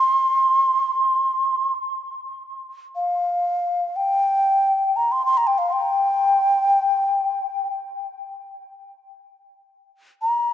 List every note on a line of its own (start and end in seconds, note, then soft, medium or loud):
0.00 1.73 C6 medium
2.96 3.98 F5 medium
3.96 4.98 G5 medium
4.96 5.13 A#5 medium
5.12 5.25 C6 medium
5.26 5.39 C6 medium
5.37 5.48 A#5 medium
5.47 5.60 G5 medium
5.58 5.74 F5 medium
5.73 7.74 G5 medium
10.22 10.53 A#5 medium